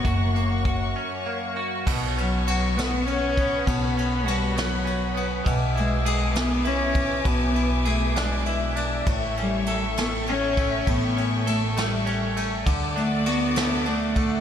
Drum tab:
CC |------|x-----|------|------|
RD |------|-xxxxx|xxxxxx|xxxxxx|
HH |xxx---|------|------|------|
SD |------|---o--|---o--|---o--|
BD |o-o---|o----o|o-----|o----o|

CC |------|------|------|------|
RD |xxxxxx|xxxxxx|xxxxxx|xxxxxx|
HH |------|------|------|------|
SD |---o--|---o--|---o--|---o--|
BD |o-----|o----o|o-----|o----o|